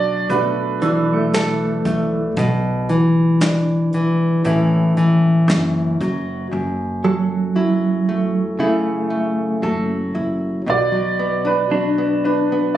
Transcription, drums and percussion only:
0.30 closed hi-hat
0.82 closed hi-hat
1.33 snare, closed hi-hat
1.85 kick, closed hi-hat
2.37 kick, closed hi-hat
2.89 closed hi-hat
3.40 snare, closed hi-hat
3.93 closed hi-hat
4.45 closed hi-hat
4.97 closed hi-hat
5.49 snare, closed hi-hat
6.01 kick, closed hi-hat

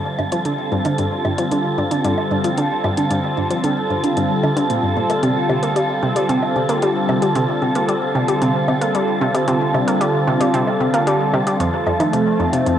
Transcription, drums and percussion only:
0.19 low woodblock
0.32 closed hi-hat
0.45 closed hi-hat
0.85 closed hi-hat, low woodblock
0.98 closed hi-hat
1.25 low woodblock
1.38 closed hi-hat
1.51 closed hi-hat
1.91 closed hi-hat
2.05 closed hi-hat
2.18 low woodblock
2.44 closed hi-hat
2.58 closed hi-hat
2.84 low woodblock
2.97 closed hi-hat
3.11 closed hi-hat
3.51 closed hi-hat
3.64 closed hi-hat
4.04 closed hi-hat
4.17 closed hi-hat
4.43 low woodblock
4.57 closed hi-hat
4.70 closed hi-hat
5.10 closed hi-hat, low woodblock
5.23 closed hi-hat
5.50 low woodblock
5.63 closed hi-hat
5.76 closed hi-hat
6.16 closed hi-hat
6.29 closed hi-hat
6.42 low woodblock
6.69 closed hi-hat
6.82 closed hi-hat
7.09 low woodblock
7.22 closed hi-hat
7.35 closed hi-hat
7.75 closed hi-hat
7.89 closed hi-hat
8.28 closed hi-hat
8.42 closed hi-hat
8.68 low woodblock
8.81 closed hi-hat
8.95 closed hi-hat
9.35 closed hi-hat, low woodblock
9.48 closed hi-hat
9.74 low woodblock
9.88 closed hi-hat
10.01 closed hi-hat
10.41 closed hi-hat
10.54 closed hi-hat
10.67 low woodblock
10.94 closed hi-hat
11.07 closed hi-hat
11.34 low woodblock
11.47 closed hi-hat
11.60 closed hi-hat
11.87 low woodblock
12.00 closed hi-hat, low woodblock
12.13 closed hi-hat
12.53 closed hi-hat
12.66 closed hi-hat

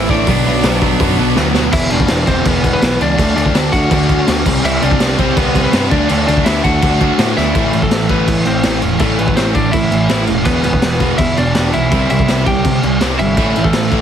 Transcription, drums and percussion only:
0.09 kick
0.27 kick, open hi-hat
0.63 snare, open hi-hat
0.82 kick
1.00 kick, open hi-hat
1.36 snare
1.54 snare
1.73 kick, crash
1.90 crash
2.00 kick
2.08 snare, crash
2.27 kick, crash
2.45 kick, crash
2.64 kick, crash
2.82 snare, crash
3.01 crash
3.19 kick, crash
3.37 crash
3.46 kick
3.55 snare, crash
3.73 kick, crash
3.91 kick, crash
4.09 kick, crash
4.28 snare, crash
4.46 kick, crash
4.65 crash
4.82 crash
4.91 kick
5.00 snare, crash
5.19 kick, crash
5.37 kick, crash
5.55 kick, crash
5.73 snare, crash
5.91 kick, crash
6.09 crash
6.28 crash
6.37 kick
6.46 snare, crash
6.64 kick, crash
6.82 kick, crash
7.01 kick, crash
7.19 snare, crash
7.37 snare
7.55 kick, crash
7.73 crash
7.82 kick
7.91 snare, crash
8.09 kick, crash
8.28 kick, crash
8.45 crash
8.63 snare, crash
8.82 crash
8.99 kick, crash
9.19 crash
9.28 kick
9.37 snare, crash
9.55 kick, crash
9.73 kick, crash
9.92 crash
10.09 snare, crash
10.27 crash
10.45 kick, crash
10.64 crash
10.73 kick
10.82 snare, crash
11.00 kick, crash
11.18 kick, crash
11.37 crash
11.55 snare, crash
11.73 crash
11.91 kick, crash
12.10 crash
12.19 kick
12.28 snare, crash
12.46 kick, crash
12.65 kick, crash
12.83 crash
13.01 snare, crash
13.19 crash
13.37 kick, crash
13.56 crash
13.64 kick
13.73 snare, crash
13.92 kick, crash

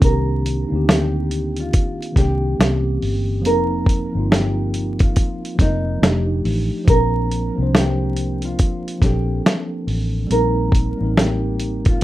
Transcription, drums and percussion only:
0.02 kick, closed hi-hat
0.46 closed hi-hat
0.89 snare, closed hi-hat
1.31 closed hi-hat
1.56 closed hi-hat
1.73 kick, closed hi-hat
2.02 closed hi-hat
2.16 kick, snare, closed hi-hat
2.61 snare, closed hi-hat
3.02 open hi-hat
3.45 closed hi-hat
3.86 kick, closed hi-hat
4.32 snare, closed hi-hat
4.74 closed hi-hat
4.99 kick, closed hi-hat
5.16 kick, closed hi-hat
5.45 closed hi-hat
5.59 kick, snare, closed hi-hat
6.03 snare, closed hi-hat
6.45 open hi-hat
6.88 kick, closed hi-hat
7.31 closed hi-hat
7.75 snare, closed hi-hat
8.17 closed hi-hat
8.42 closed hi-hat
8.59 kick, closed hi-hat
8.88 closed hi-hat
9.02 kick, snare, closed hi-hat
9.46 snare, closed hi-hat
9.88 open hi-hat
10.31 closed hi-hat
10.72 kick, closed hi-hat
11.17 snare, closed hi-hat
11.60 closed hi-hat
11.85 kick, closed hi-hat

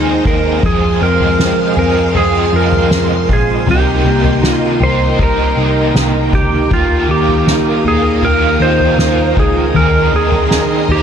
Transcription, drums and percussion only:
0.25 kick
0.63 kick, floor tom
1.20 floor tom
1.39 snare
1.77 floor tom
2.15 floor tom
2.72 floor tom
2.91 snare
3.29 kick
3.67 floor tom
4.24 floor tom
4.44 snare
4.82 floor tom
5.19 kick, floor tom
5.95 snare
6.33 kick, floor tom
6.71 kick, floor tom
7.28 floor tom
7.47 snare
7.85 floor tom
8.22 floor tom
8.80 floor tom
8.99 snare
9.37 kick
9.75 floor tom
10.32 floor tom
10.51 snare
10.89 floor tom

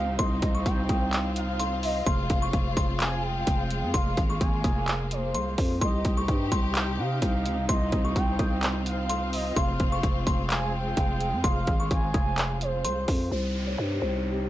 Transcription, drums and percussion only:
0.19 kick, closed hi-hat
0.42 kick, closed hi-hat
0.66 kick, closed hi-hat
0.89 kick, closed hi-hat
1.13 clap, closed hi-hat
1.36 closed hi-hat
1.60 closed hi-hat
1.83 open hi-hat
2.07 kick, closed hi-hat
2.30 kick, closed hi-hat
2.53 kick, closed hi-hat
2.77 kick, closed hi-hat
3.00 clap, closed hi-hat
3.47 kick, closed hi-hat
3.71 closed hi-hat
3.94 kick, closed hi-hat
4.17 kick, closed hi-hat
4.41 kick, closed hi-hat
4.64 kick, closed hi-hat
4.88 clap, closed hi-hat
5.11 closed hi-hat
5.34 closed hi-hat
5.58 kick, open hi-hat
5.81 kick, closed hi-hat
6.05 kick, closed hi-hat
6.28 kick, closed hi-hat
6.52 kick, closed hi-hat
6.75 clap, closed hi-hat
7.22 kick, closed hi-hat
7.46 closed hi-hat
7.69 kick, closed hi-hat
7.92 kick, closed hi-hat
8.16 kick, closed hi-hat
8.39 kick, closed hi-hat
8.63 clap, closed hi-hat
8.86 closed hi-hat
9.09 closed hi-hat
9.33 open hi-hat
9.56 kick, closed hi-hat
9.80 kick, closed hi-hat
10.03 kick, closed hi-hat
10.27 kick, closed hi-hat
10.50 clap, closed hi-hat
10.97 kick, closed hi-hat
11.21 closed hi-hat
11.44 kick, closed hi-hat
11.67 kick, closed hi-hat
11.91 kick, closed hi-hat
12.14 kick, closed hi-hat
12.38 clap, closed hi-hat
12.61 closed hi-hat
12.85 closed hi-hat
13.08 kick, open hi-hat

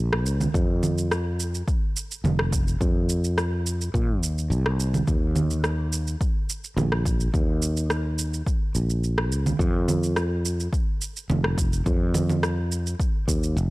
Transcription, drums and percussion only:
0.13 cross-stick
0.26 shaker
0.41 low conga, shaker
0.54 kick, shaker
0.83 low conga, shaker
0.98 shaker
1.11 cross-stick, shaker
1.40 shaker
1.55 shaker
1.68 kick, shaker
1.96 shaker
2.11 shaker
2.25 low conga, shaker
2.39 cross-stick
2.53 kick, shaker
2.68 shaker
2.81 kick, shaker
3.09 shaker
3.24 shaker
3.38 cross-stick, shaker
3.67 shaker
3.81 shaker
3.94 kick, shaker
4.23 shaker
4.38 shaker
4.52 shaker
4.66 cross-stick
4.80 shaker
4.94 low conga, shaker
5.07 kick, shaker
5.36 low conga, shaker
5.50 shaker
5.64 cross-stick, shaker
5.93 shaker
6.07 shaker
6.21 kick, shaker
6.50 shaker
6.64 shaker
6.78 low conga, shaker
6.92 cross-stick
7.05 kick, shaker
7.20 shaker
7.34 kick, shaker
7.62 shaker
7.77 shaker
7.90 cross-stick, shaker
8.19 shaker
8.34 shaker
8.47 kick, shaker
8.75 shaker
8.90 shaker
9.04 shaker
9.18 cross-stick
9.32 shaker
9.46 low conga, shaker
9.59 kick, shaker
9.88 low conga, shaker
10.03 shaker
10.16 cross-stick, shaker
10.45 shaker
10.60 shaker
10.73 kick, shaker
11.01 shaker
11.16 shaker
11.30 low conga, shaker
11.44 cross-stick
11.58 kick, shaker
11.73 shaker
11.86 kick, shaker
12.14 low conga, shaker
12.29 low conga, shaker
12.43 cross-stick, shaker
12.72 shaker
12.87 shaker
13.00 kick, shaker
13.28 kick, shaker
13.43 shaker
13.57 shaker

